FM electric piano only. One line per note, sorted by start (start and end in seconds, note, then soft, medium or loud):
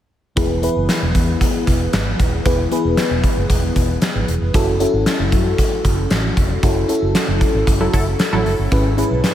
0.36 1.11 E3 medium
0.36 0.56 B3 medium
0.36 0.56 E4 medium
0.36 0.56 G#4 medium
0.36 0.56 B4 medium
0.62 1.40 B3 medium
0.62 1.40 E4 medium
0.62 1.40 G#4 medium
0.62 1.40 B4 medium
2.45 3.20 E3 medium
2.45 2.65 B3 medium
2.45 2.65 E4 medium
2.45 2.65 G#4 medium
2.45 2.65 B4 medium
2.71 3.49 B3 medium
2.71 3.49 E4 medium
2.71 3.49 G#4 medium
2.71 3.49 B4 medium
4.54 4.73 C#4 medium
4.54 4.73 E4 medium
4.54 4.74 F#4 medium
4.54 4.74 A4 medium
4.80 5.57 C#4 medium
4.80 5.57 E4 medium
4.80 5.58 F#4 medium
4.80 5.58 A4 medium
6.63 6.82 C#4 medium
6.63 6.82 E4 medium
6.63 6.83 F#4 medium
6.63 6.83 A4 medium
6.89 7.66 C#4 medium
6.89 7.66 E4 medium
6.89 7.66 F#4 medium
6.89 7.67 A4 medium
8.71 9.34 G#2 medium
8.71 8.91 C#4 medium
8.71 8.91 E4 medium
8.71 8.91 G#4 medium
8.71 8.91 B4 medium
8.97 9.34 C#4 medium
8.97 9.34 E4 medium
8.97 9.34 G#4 medium
8.97 9.34 B4 medium